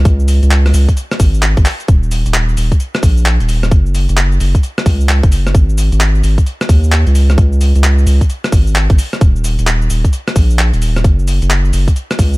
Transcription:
0.05 sub bass C#2, kick, closed hi-hat, shaker
0.20 shaker
0.28 open hi-hat, shaker
0.43 sub bass C#2, closed hi-hat, shaker
0.51 clap, shaker
0.66 cross-stick, open hi-hat, shaker
0.74 sub bass C#2, open hi-hat, shaker
0.89 kick, closed hi-hat, shaker
0.97 closed hi-hat, shaker
1.11 cross-stick, closed hi-hat, shaker
1.20 sub bass G#1, kick, open hi-hat, shaker
1.34 shaker
1.43 clap, shaker
1.57 sub bass G#1, kick, closed hi-hat, shaker
1.66 clap, open hi-hat, shaker
1.80 closed hi-hat, shaker
1.88 sub bass D#1, kick, closed hi-hat, shaker
2.03 shaker
2.11 open hi-hat, shaker
2.26 sub bass D#1, closed hi-hat, shaker
2.34 clap, shaker
2.49 shaker
2.57 sub bass D#1, open hi-hat, shaker
2.72 kick, closed hi-hat, shaker
2.80 closed hi-hat, shaker
2.95 cross-stick, closed hi-hat, shaker
3.03 sub bass A#1, kick, open hi-hat, shaker
3.18 shaker
3.26 clap, shaker
3.40 sub bass D#1, closed hi-hat, shaker
3.49 open hi-hat, shaker
3.63 cross-stick, closed hi-hat, shaker
3.71 sub bass F#1, kick, closed hi-hat, shaker
3.86 shaker
3.95 open hi-hat, shaker
4.09 sub bass F#1, closed hi-hat, shaker
4.17 clap, shaker
4.32 shaker
4.40 sub bass F#1, open hi-hat, shaker
4.55 kick, closed hi-hat, shaker
4.63 closed hi-hat, shaker
4.78 cross-stick, closed hi-hat, shaker
4.86 sub bass C#2, kick, open hi-hat, shaker
5.01 shaker
5.09 clap, shaker
5.23 sub bass F#1, kick, closed hi-hat, shaker
5.32 open hi-hat, shaker
5.47 cross-stick, closed hi-hat, shaker
5.55 sub bass G#1, kick, closed hi-hat, shaker
5.70 shaker
5.78 open hi-hat, shaker
5.92 sub bass G#1, closed hi-hat, shaker
6.01 clap, shaker
6.15 shaker
6.23 sub bass G#1, open hi-hat, shaker
6.38 kick, closed hi-hat, shaker
6.46 closed hi-hat, shaker
6.61 cross-stick, closed hi-hat, shaker
6.69 sub bass D#2, kick, open hi-hat, shaker
6.84 shaker
6.92 clap, shaker
7.07 sub bass C#2, closed hi-hat, shaker
7.15 open hi-hat, shaker
7.30 cross-stick, closed hi-hat, shaker
7.38 sub bass C#2, kick, closed hi-hat, shaker
7.53 shaker
7.61 open hi-hat, shaker
7.75 sub bass C#2, closed hi-hat, shaker
7.84 clap, shaker
7.98 shaker
8.07 sub bass C#2, open hi-hat, shaker
8.21 kick, closed hi-hat, shaker
8.30 closed hi-hat, shaker
8.44 cross-stick, closed hi-hat, shaker
8.52 sub bass G#1, kick, open hi-hat, shaker
8.67 shaker
8.76 clap, shaker
8.90 sub bass G#1, kick, closed hi-hat, shaker
8.98 open hi-hat, shaker
9.13 cross-stick, closed hi-hat, shaker
9.21 sub bass D#1, kick, closed hi-hat, shaker
9.36 shaker
9.44 open hi-hat, shaker
9.59 sub bass D#1, closed hi-hat, shaker
9.67 clap, shaker
9.82 shaker
9.90 sub bass D#1, open hi-hat, shaker
10.05 kick, closed hi-hat, shaker
10.13 closed hi-hat, shaker
10.28 cross-stick, closed hi-hat, shaker
10.36 sub bass A#1, kick, open hi-hat, shaker
10.51 shaker
10.59 clap, shaker
10.73 sub bass D#1, closed hi-hat, shaker
10.82 open hi-hat, shaker
10.96 cross-stick, closed hi-hat, shaker
11.04 sub bass F#1, kick, closed hi-hat, shaker
11.19 shaker
11.28 open hi-hat, shaker
11.42 sub bass F#1, closed hi-hat, shaker
11.50 clap, shaker
11.65 shaker
11.73 sub bass F#1, open hi-hat, shaker
11.88 kick, closed hi-hat, shaker
11.96 closed hi-hat, shaker
12.11 cross-stick, closed hi-hat, shaker
12.19 sub bass C#2, kick, open hi-hat, shaker
12.34 shaker

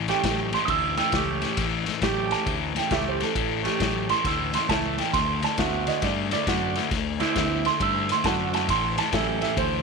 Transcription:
Already playing: fingered electric bass A1
0.07 overdriven electric guitar A2 E3, saxophone section A3 C#4 G4, upright piano G5, snare, ride
0.23 fingered electric bass A1, overdriven electric guitar A2 F#3, kick, snare, ride
0.53 overdriven electric guitar A2 E3, upright piano C6, snare, ride
0.65 fingered electric bass D2, overdriven electric guitar A2 E3, upright piano D#6, kick, ride
0.70 upright piano E6
0.97 overdriven electric guitar A2 E3, upright piano G5 E6, snare, ride
1.12 fingered electric bass C#2, overdriven electric guitar A2 E3, saxophone section A3 C#4 G4, kick, snare, ride
1.42 overdriven electric guitar A2 E3, snare, ride
1.57 fingered electric bass A1, overdriven electric guitar A2 E3, kick, snare, ride
1.86 overdriven electric guitar A2 E3, snare, ride
2.01 fingered electric bass A1, overdriven electric guitar A2 F#3, saxophone section A3 C#4 G4, kick, snare, ride
2.27 overdriven electric guitar A2, upright piano G#5, ride
2.32 overdriven electric guitar E3, upright piano A5, snare
2.46 fingered electric bass D2, overdriven electric guitar A2 E3, kick, ride
2.75 overdriven electric guitar A2 E3, upright piano G5, snare, ride
2.90 fingered electric bass C#2, overdriven electric guitar A2 E3, saxophone section A3 C#4 G4, upright piano E5, kick, snare, ride
3.08 upright piano C5
3.20 overdriven electric guitar A2 E3, upright piano A4, snare, ride
3.35 fingered electric bass A1, overdriven electric guitar A2 E3, kick, ride
3.64 overdriven electric guitar A2 E3, saxophone section A3 C#4 G4, snare, ride
3.80 fingered electric bass A1, overdriven electric guitar A2 F#3, kick, snare, ride
4.09 overdriven electric guitar A2 E3, upright piano C6, snare, ride
4.24 fingered electric bass D2, overdriven electric guitar A2 E3, upright piano E6, kick, snare, ride
4.53 overdriven electric guitar A2 E3, upright piano C6, snare, ride
4.68 fingered electric bass C#2, overdriven electric guitar A2 E3, saxophone section A3 C#4 E4, upright piano A5, kick, snare, ride
4.98 overdriven electric guitar A2 E3, upright piano G5, snare, ride
5.13 fingered electric bass D2, overdriven electric guitar D3 A3, upright piano C6, kick, snare, ride
5.42 overdriven electric guitar D3 A3, upright piano A5, snare, ride
5.57 fingered electric bass D2, overdriven electric guitar D3 B3, saxophone section C4 D4 F#4, upright piano E5, kick, snare, ride
5.87 overdriven electric guitar D3 A3, upright piano D#5, snare, ride
6.02 fingered electric bass G2, overdriven electric guitar D3 A3, upright piano D5, kick, snare, ride
6.31 overdriven electric guitar D3 A3, upright piano D5, snare, ride
6.46 fingered electric bass F#2, overdriven electric guitar D3 A3, saxophone section C4 D4 F#4, kick, snare, ride
6.75 overdriven electric guitar D3 A3, snare, ride
6.91 fingered electric bass D2, overdriven electric guitar D3 A3, kick, snare, ride
7.19 overdriven electric guitar D3 A3, saxophone section C4 D4 E4, snare, ride
7.36 fingered electric bass D2, overdriven electric guitar D3 B3, kick, snare, ride
7.65 overdriven electric guitar D3 A3, upright piano C6, snare, ride
7.80 fingered electric bass G2, overdriven electric guitar D3 A3, upright piano E6, kick, ride
8.09 overdriven electric guitar D3 A3, upright piano C6, snare, ride
8.24 fingered electric bass F#2, overdriven electric guitar D3 A3, saxophone section C4 D4 F#4, upright piano A5, kick, snare, ride
8.54 overdriven electric guitar D3 A3, upright piano A5, snare, ride
8.69 fingered electric bass A1, overdriven electric guitar A2 E3, upright piano C6, kick, snare, ride
8.98 overdriven electric guitar A2 E3, upright piano A5, snare, ride
9.12 fingered electric bass A1, overdriven electric guitar A2 F#3, saxophone section C#4 G4 A4, upright piano E5, kick, snare, ride
9.41 overdriven electric guitar A2 E3, upright piano E5, snare, ride
9.57 fingered electric bass D2, overdriven electric guitar A2 E3, upright piano C5, kick, ride

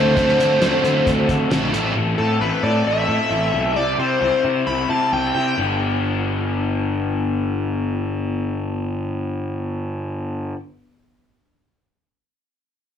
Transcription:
Already playing: picked electric bass D2, overdriven electric guitar D3 F#3 A3 C4 D4 F#4 A4, analog synth lead C5
0.15 picked electric bass D2, overdriven electric guitar D3 F#3 A3 C4 D4 F#4 A4, kick, closed hi-hat
0.29 snare
0.39 picked electric bass D3, overdriven electric guitar C4 D4 A4, closed hi-hat
0.59 picked electric bass D2, overdriven electric guitar D3 F#3 A3 C4 D4 F#4 A4, snare, closed hi-hat
0.83 picked electric bass D3, overdriven electric guitar A3 C4 D4 F#4 A4, closed hi-hat
1.04 picked electric bass D2, overdriven electric guitar F#3 C4 D4 A4, kick, closed hi-hat
1.28 picked electric bass D3, overdriven electric guitar F#3 C4 D4 A4, kick, closed hi-hat
1.50 picked electric bass A#1, overdriven electric guitar D3 F#3 A3 C4 D4 F#4 A4, snare, closed hi-hat
1.72 picked electric bass A1, overdriven electric guitar A2 E3 A3 C4 E4 A4, closed hi-hat
1.95 picked electric bass A1, overdriven electric guitar C4 E4 A4
2.18 picked electric bass A2, overdriven electric guitar E4 A4, analog synth lead A4
2.39 picked electric bass A1, overdriven electric guitar C4 E4 A4, analog synth lead B4
2.63 picked electric bass A2, overdriven electric guitar E4 A4, analog synth lead D5
2.85 picked electric bass A1, overdriven electric guitar C4 E4 A4, analog synth lead E5
3.07 picked electric bass A2, overdriven electric guitar C4 E4 A4
3.29 picked electric bass A1, overdriven electric guitar C4 E4 A4
3.52 picked electric bass B1, overdriven electric guitar E4 A4
3.74 picked electric bass C2, overdriven electric guitar G3 C4 E4, analog synth lead D5
3.98 picked electric bass C3, overdriven electric guitar C4 E4, analog synth lead C5
4.20 picked electric bass C2, overdriven electric guitar G3 C4 E4, analog synth lead C5
4.42 picked electric bass C3, overdriven electric guitar C4 E4
4.66 picked electric bass C2, overdriven electric guitar G3 C4 E4, analog synth lead B5
4.88 picked electric bass C3, overdriven electric guitar G3 C4 E4, analog synth lead A5
5.11 picked electric bass C2, overdriven electric guitar G3 C4 E4, analog synth lead G5
5.34 picked electric bass C3, overdriven electric guitar C4 E4, analog synth lead G5
5.57 picked electric bass G1, overdriven electric guitar B3 D4
5.61 overdriven electric guitar G4

